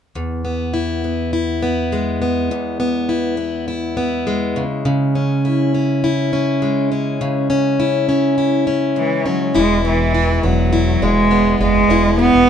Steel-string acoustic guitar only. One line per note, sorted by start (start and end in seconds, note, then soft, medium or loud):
0.15 2.50 E2 medium
0.45 1.03 B3 soft
0.74 1.33 E4 medium
1.04 1.61 B3 soft
1.33 3.09 E4 medium
1.62 2.20 B3 soft
1.92 4.26 G#3 soft
2.22 2.79 B3 soft
2.51 4.63 E2 medium
2.80 3.36 B3 soft
3.09 3.67 E4 medium
3.37 3.96 B3 soft
3.68 5.44 E4 medium
3.97 4.62 B3 soft
4.27 6.62 G#3 soft
4.56 4.84 C#3 medium
4.85 7.20 C#3 medium
5.15 5.73 C#4 soft
5.45 6.03 E4 medium
5.74 6.32 C#4 soft
6.04 7.79 E4 medium
6.33 6.90 C#4 soft
6.62 8.96 G#3 soft
6.92 7.49 C#4 soft
7.21 9.56 C#3 medium
7.50 8.07 C#4 medium
7.80 8.37 E4 medium
8.09 8.66 C#4 soft
8.38 9.55 E4 medium
8.67 9.24 C#4 soft
8.96 9.84 G#3 soft
9.26 9.61 C#4 soft
9.55 11.89 E2 medium
9.55 10.14 E4 medium
9.85 11.02 G#3 medium
10.14 10.72 E4 medium
10.43 11.30 B3 soft
10.73 11.90 E4 medium
11.02 11.60 G#3 medium
11.31 12.49 B3 medium
11.61 12.18 G#3 soft
11.90 12.49 E2 medium
11.90 12.47 E4 medium
12.19 12.49 G#3 medium